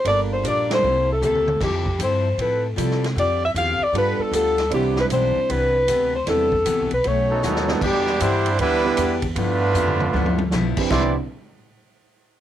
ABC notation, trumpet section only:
X:1
M:4/4
L:1/8
Q:"Swing" 1/4=155
K:C
V:1 name="Trumpet section"
z8 | z8 | z8 | z8 |
z4 z [^F,B,^DA] [F,B,DA]2 | [B,DG]2 [G,DEc]2 [G,DEB]3 z | [A,DFB]6 z2 | [Gdec'] z6 z |]